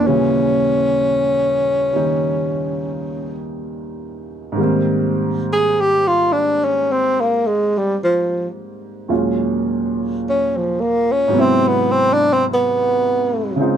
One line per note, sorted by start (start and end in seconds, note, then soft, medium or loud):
0.00 4.56 D#2 soft
0.00 4.57 A#2 soft
0.00 4.58 E3 soft
0.07 4.61 C#3 medium
0.07 1.93 G3 soft
0.07 3.46 C#4 medium
1.93 4.54 D#3 soft
1.93 4.56 G3 soft
1.93 4.59 A#3 soft
1.93 4.59 D#4 soft
4.52 9.07 G#2 medium
4.52 9.09 D#3 soft
4.58 9.10 G3 medium
4.58 9.12 A#3 soft
4.63 9.13 C4 medium
5.53 5.82 G#4 medium
5.81 6.09 G4 medium
6.08 6.34 F4 medium
6.33 6.66 D4 medium
6.64 6.94 C#4 medium
6.92 7.22 C4 medium
7.21 7.48 A#3 medium
7.47 7.79 G#3 medium
7.78 7.97 G3 medium
8.04 8.48 F3 medium
9.08 11.33 D#2 soft
9.08 11.34 A#2 soft
9.08 11.29 F#3 soft
9.08 11.34 G#3 soft
9.08 11.34 C#4 soft
9.08 11.34 F4 soft
10.30 10.59 C#4 medium
10.57 10.82 F3 medium
10.81 11.14 A#3 medium
11.12 11.43 C#4 medium
11.28 13.55 G#2 medium
11.28 13.56 F#3 medium
11.33 13.59 C3 medium
11.33 13.58 B3 medium
11.38 11.69 C4 medium
11.38 13.60 E4 medium
11.68 11.93 B3 medium
11.92 12.15 C4 medium
12.14 12.35 D4 medium
12.33 12.46 C4 medium
12.54 13.58 B3 medium
13.56 13.77 C#3 soft
13.56 13.77 G#3 soft
13.56 13.77 C4 soft
13.60 13.77 D#4 soft
13.60 13.77 F4 soft